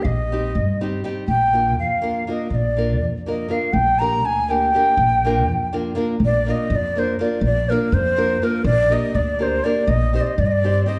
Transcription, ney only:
0, 0, Header, 1, 2, 480
1, 0, Start_track
1, 0, Key_signature, -2, "major"
1, 0, Tempo, 490998
1, 62, Time_signature, 5, 3, 24, 8
1, 10746, End_track
2, 0, Start_track
2, 0, Title_t, "Ney"
2, 0, Program_c, 0, 77
2, 23, Note_on_c, 0, 77, 65
2, 60, Note_on_c, 0, 75, 88
2, 74, Note_off_c, 0, 77, 0
2, 802, Note_off_c, 0, 75, 0
2, 1251, Note_on_c, 0, 79, 90
2, 1715, Note_off_c, 0, 79, 0
2, 1750, Note_on_c, 0, 77, 82
2, 2197, Note_off_c, 0, 77, 0
2, 2250, Note_on_c, 0, 75, 68
2, 2489, Note_on_c, 0, 74, 80
2, 2504, Note_off_c, 0, 75, 0
2, 2969, Note_off_c, 0, 74, 0
2, 3214, Note_on_c, 0, 75, 74
2, 3435, Note_on_c, 0, 77, 81
2, 3450, Note_off_c, 0, 75, 0
2, 3645, Note_on_c, 0, 79, 95
2, 3660, Note_off_c, 0, 77, 0
2, 3900, Note_on_c, 0, 82, 107
2, 3915, Note_off_c, 0, 79, 0
2, 4157, Note_on_c, 0, 80, 94
2, 4172, Note_off_c, 0, 82, 0
2, 4402, Note_on_c, 0, 79, 98
2, 4417, Note_off_c, 0, 80, 0
2, 5602, Note_off_c, 0, 79, 0
2, 6111, Note_on_c, 0, 74, 97
2, 6359, Note_on_c, 0, 75, 95
2, 6374, Note_off_c, 0, 74, 0
2, 6602, Note_on_c, 0, 74, 112
2, 6616, Note_off_c, 0, 75, 0
2, 6828, Note_on_c, 0, 72, 97
2, 6843, Note_off_c, 0, 74, 0
2, 7035, Note_off_c, 0, 72, 0
2, 7040, Note_on_c, 0, 74, 79
2, 7250, Note_off_c, 0, 74, 0
2, 7280, Note_on_c, 0, 74, 109
2, 7521, Note_on_c, 0, 70, 91
2, 7536, Note_off_c, 0, 74, 0
2, 7759, Note_on_c, 0, 72, 100
2, 7774, Note_off_c, 0, 70, 0
2, 8250, Note_on_c, 0, 70, 83
2, 8265, Note_off_c, 0, 72, 0
2, 8456, Note_off_c, 0, 70, 0
2, 8462, Note_on_c, 0, 74, 120
2, 8720, Note_on_c, 0, 75, 101
2, 8735, Note_off_c, 0, 74, 0
2, 8948, Note_on_c, 0, 74, 91
2, 8963, Note_off_c, 0, 75, 0
2, 9212, Note_on_c, 0, 72, 84
2, 9226, Note_off_c, 0, 74, 0
2, 9423, Note_on_c, 0, 74, 87
2, 9438, Note_off_c, 0, 72, 0
2, 9660, Note_on_c, 0, 75, 101
2, 9675, Note_off_c, 0, 74, 0
2, 9920, Note_off_c, 0, 75, 0
2, 9929, Note_on_c, 0, 75, 86
2, 9979, Note_on_c, 0, 74, 66
2, 9993, Note_off_c, 0, 75, 0
2, 10039, Note_on_c, 0, 75, 78
2, 10053, Note_off_c, 0, 74, 0
2, 10157, Note_on_c, 0, 74, 97
2, 10172, Note_off_c, 0, 75, 0
2, 10229, Note_on_c, 0, 75, 82
2, 10244, Note_off_c, 0, 74, 0
2, 10279, Note_on_c, 0, 74, 109
2, 10294, Note_off_c, 0, 75, 0
2, 10619, Note_off_c, 0, 74, 0
2, 10624, Note_on_c, 0, 75, 88
2, 10746, Note_off_c, 0, 75, 0
2, 10746, End_track
0, 0, End_of_file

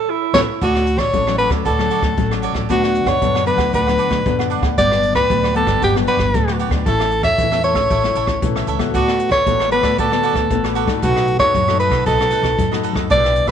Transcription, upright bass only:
0, 0, Header, 1, 2, 480
1, 0, Start_track
1, 0, Key_signature, 2, "major"
1, 0, Tempo, 520382
1, 571, Time_signature, 4, 2, 24, 8
1, 12462, End_track
2, 0, Start_track
2, 0, Title_t, "Upright bass"
2, 0, Program_c, 0, 32
2, 308, Note_on_c, 0, 33, 95
2, 408, Note_off_c, 0, 33, 0
2, 568, Note_on_c, 0, 38, 104
2, 875, Note_off_c, 0, 38, 0
2, 892, Note_on_c, 0, 33, 76
2, 1010, Note_off_c, 0, 33, 0
2, 1045, Note_on_c, 0, 33, 91
2, 1353, Note_off_c, 0, 33, 0
2, 1370, Note_on_c, 0, 38, 92
2, 1489, Note_off_c, 0, 38, 0
2, 1529, Note_on_c, 0, 38, 87
2, 1734, Note_off_c, 0, 38, 0
2, 1850, Note_on_c, 0, 38, 85
2, 1969, Note_off_c, 0, 38, 0
2, 2008, Note_on_c, 0, 33, 85
2, 2315, Note_off_c, 0, 33, 0
2, 2330, Note_on_c, 0, 33, 81
2, 2449, Note_off_c, 0, 33, 0
2, 2490, Note_on_c, 0, 38, 103
2, 2796, Note_off_c, 0, 38, 0
2, 2810, Note_on_c, 0, 42, 79
2, 2929, Note_off_c, 0, 42, 0
2, 2969, Note_on_c, 0, 42, 91
2, 3276, Note_off_c, 0, 42, 0
2, 3288, Note_on_c, 0, 38, 93
2, 3408, Note_off_c, 0, 38, 0
2, 3447, Note_on_c, 0, 38, 88
2, 3653, Note_off_c, 0, 38, 0
2, 3769, Note_on_c, 0, 38, 85
2, 3889, Note_off_c, 0, 38, 0
2, 3929, Note_on_c, 0, 42, 86
2, 4236, Note_off_c, 0, 42, 0
2, 4251, Note_on_c, 0, 38, 76
2, 4370, Note_off_c, 0, 38, 0
2, 4407, Note_on_c, 0, 31, 101
2, 4715, Note_off_c, 0, 31, 0
2, 4731, Note_on_c, 0, 38, 78
2, 4850, Note_off_c, 0, 38, 0
2, 4889, Note_on_c, 0, 38, 92
2, 5196, Note_off_c, 0, 38, 0
2, 5209, Note_on_c, 0, 31, 96
2, 5329, Note_off_c, 0, 31, 0
2, 5369, Note_on_c, 0, 31, 89
2, 5574, Note_off_c, 0, 31, 0
2, 5692, Note_on_c, 0, 31, 84
2, 5811, Note_off_c, 0, 31, 0
2, 5850, Note_on_c, 0, 38, 88
2, 6157, Note_off_c, 0, 38, 0
2, 6172, Note_on_c, 0, 38, 78
2, 6291, Note_off_c, 0, 38, 0
2, 6331, Note_on_c, 0, 33, 98
2, 6637, Note_off_c, 0, 33, 0
2, 6653, Note_on_c, 0, 40, 82
2, 6772, Note_off_c, 0, 40, 0
2, 6811, Note_on_c, 0, 40, 90
2, 7118, Note_off_c, 0, 40, 0
2, 7133, Note_on_c, 0, 33, 89
2, 7251, Note_off_c, 0, 33, 0
2, 7291, Note_on_c, 0, 33, 86
2, 7495, Note_off_c, 0, 33, 0
2, 7520, Note_on_c, 0, 33, 81
2, 7741, Note_off_c, 0, 33, 0
2, 7771, Note_on_c, 0, 35, 75
2, 7987, Note_off_c, 0, 35, 0
2, 7996, Note_on_c, 0, 37, 81
2, 8219, Note_off_c, 0, 37, 0
2, 8251, Note_on_c, 0, 38, 93
2, 8557, Note_off_c, 0, 38, 0
2, 8572, Note_on_c, 0, 33, 78
2, 8691, Note_off_c, 0, 33, 0
2, 8732, Note_on_c, 0, 33, 86
2, 9038, Note_off_c, 0, 33, 0
2, 9051, Note_on_c, 0, 38, 91
2, 9170, Note_off_c, 0, 38, 0
2, 9210, Note_on_c, 0, 38, 87
2, 9415, Note_off_c, 0, 38, 0
2, 9532, Note_on_c, 0, 38, 86
2, 9651, Note_off_c, 0, 38, 0
2, 9692, Note_on_c, 0, 33, 86
2, 9997, Note_off_c, 0, 33, 0
2, 10015, Note_on_c, 0, 42, 84
2, 10132, Note_off_c, 0, 42, 0
2, 10171, Note_on_c, 0, 35, 98
2, 10477, Note_off_c, 0, 35, 0
2, 10489, Note_on_c, 0, 42, 80
2, 10609, Note_off_c, 0, 42, 0
2, 10650, Note_on_c, 0, 42, 94
2, 10956, Note_off_c, 0, 42, 0
2, 10970, Note_on_c, 0, 35, 92
2, 11089, Note_off_c, 0, 35, 0
2, 11130, Note_on_c, 0, 35, 91
2, 11334, Note_off_c, 0, 35, 0
2, 11451, Note_on_c, 0, 35, 86
2, 11569, Note_off_c, 0, 35, 0
2, 11609, Note_on_c, 0, 42, 82
2, 11915, Note_off_c, 0, 42, 0
2, 11929, Note_on_c, 0, 42, 84
2, 12048, Note_off_c, 0, 42, 0
2, 12091, Note_on_c, 0, 35, 102
2, 12396, Note_off_c, 0, 35, 0
2, 12412, Note_on_c, 0, 35, 75
2, 12462, Note_off_c, 0, 35, 0
2, 12462, End_track
0, 0, End_of_file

